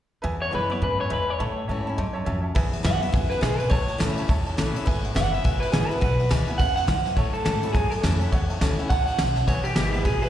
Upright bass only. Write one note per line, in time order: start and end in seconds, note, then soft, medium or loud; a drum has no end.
0.24 0.52 E2 medium
0.54 0.81 F#2 medium
0.82 1.10 G#2 medium
1.11 1.39 E2 medium
1.40 1.68 A2 medium
1.69 1.97 G#2 medium
1.98 2.26 F#2 medium
2.27 2.55 F2 medium
2.56 2.84 E2 medium
2.85 3.13 F#2 medium
3.14 3.42 E2 medium
3.42 3.70 B2 medium
3.71 3.99 A2 medium
4.01 4.28 D2 loud
4.29 4.57 E2 medium
4.59 4.74 A1 medium
4.76 muted upright bass stroke soft
4.87 5.15 G#1 medium
5.16 5.44 F#1 medium
5.45 5.73 G#1 medium
5.73 6.01 A1 medium
6.02 6.30 B1 medium
6.31 6.59 D2 medium
6.60 6.88 E2 medium
6.88 7.16 F#2 medium
7.17 7.45 A2 medium
7.47 7.74 G#2 medium
7.75 8.03 F#2 medium
8.04 8.32 F2 medium
8.33 8.61 E2 loud
8.62 8.89 D2 loud
8.91 9.18 C#2 medium
9.20 9.47 B1 medium
9.48 9.76 E1 medium
9.77 10.04 G#1 medium
10.05 10.29 A1 medium